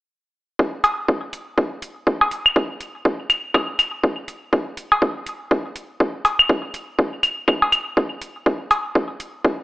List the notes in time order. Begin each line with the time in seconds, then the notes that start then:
0.59 kick
0.84 open hi-hat, cowbell
1.08 kick
1.33 open hi-hat
1.58 kick
1.82 open hi-hat
2.07 kick
2.21 cowbell
2.31 open hi-hat
2.46 claves
2.56 kick
2.81 open hi-hat
3.05 kick
3.30 open hi-hat, claves
3.54 kick, cowbell, claves
3.79 open hi-hat, claves
4.04 kick
4.28 open hi-hat
4.53 kick
4.77 open hi-hat
4.92 cowbell
5.02 kick
5.26 open hi-hat
5.51 kick
5.76 open hi-hat
6.00 kick
6.25 open hi-hat, cowbell
6.39 claves
6.49 kick
6.74 open hi-hat
6.99 kick
7.23 open hi-hat, claves
7.48 kick, claves
7.62 cowbell
7.72 open hi-hat, claves
7.97 kick
8.22 open hi-hat
8.46 kick
8.71 open hi-hat, cowbell
8.95 kick
9.20 open hi-hat
9.45 kick